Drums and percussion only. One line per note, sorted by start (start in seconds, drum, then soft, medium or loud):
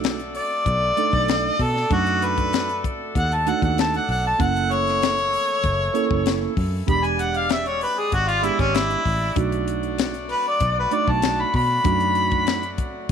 0.04 snare loud
0.04 closed hi-hat medium
0.19 closed hi-hat soft
0.35 open hi-hat medium
0.66 kick medium
0.66 closed hi-hat medium
0.97 closed hi-hat medium
1.13 kick medium
1.28 snare loud
1.28 closed hi-hat medium
1.59 kick medium
1.59 open hi-hat medium
1.76 snare soft
1.91 kick loud
1.91 closed hi-hat medium
2.07 closed hi-hat soft
2.22 closed hi-hat medium
2.38 kick medium
2.38 closed hi-hat soft
2.53 snare loud
2.53 closed hi-hat medium
2.69 closed hi-hat soft
2.84 kick medium
2.84 closed hi-hat medium
3.15 kick medium
3.15 closed hi-hat medium
3.32 closed hi-hat soft
3.47 closed hi-hat medium
3.62 kick medium
3.62 closed hi-hat soft
3.78 snare loud
3.78 closed hi-hat medium
3.94 closed hi-hat soft
4.09 open hi-hat medium
4.40 kick loud
4.40 closed hi-hat medium
4.56 closed hi-hat soft
4.71 closed hi-hat medium
4.87 snare soft
4.87 closed hi-hat soft
5.02 snare loud
5.02 closed hi-hat medium
5.18 closed hi-hat soft
5.33 open hi-hat medium
5.64 kick medium
5.64 closed hi-hat medium
5.95 closed hi-hat medium
6.11 kick medium
6.26 snare loud
6.26 closed hi-hat medium
6.57 kick medium
6.57 open hi-hat medium
6.88 kick loud
6.88 closed hi-hat medium
7.04 closed hi-hat soft
7.19 closed hi-hat medium
7.34 closed hi-hat soft
7.49 snare loud
7.49 closed hi-hat medium
7.66 closed hi-hat soft
7.81 open hi-hat medium
8.12 kick medium
8.12 closed hi-hat medium
8.28 closed hi-hat soft
8.43 closed hi-hat medium
8.59 kick medium
8.59 closed hi-hat soft
8.75 snare loud
8.75 closed hi-hat loud
8.90 closed hi-hat soft
9.05 kick medium
9.05 open hi-hat medium
9.36 kick loud
9.36 closed hi-hat medium
9.52 closed hi-hat soft
9.68 closed hi-hat medium
9.83 closed hi-hat soft
9.98 snare loud
9.98 closed hi-hat medium
10.14 closed hi-hat soft
10.29 open hi-hat medium
10.60 kick medium
10.60 closed hi-hat medium
10.91 closed hi-hat medium
11.08 kick medium
11.22 snare loud
11.22 closed hi-hat medium
11.54 kick medium
11.54 open hi-hat medium
11.85 kick loud
11.85 closed hi-hat medium
12.00 closed hi-hat soft
12.15 closed hi-hat medium
12.31 kick medium
12.31 closed hi-hat soft
12.47 snare loud
12.47 closed hi-hat medium
12.63 closed hi-hat soft
12.78 kick medium
12.78 closed hi-hat medium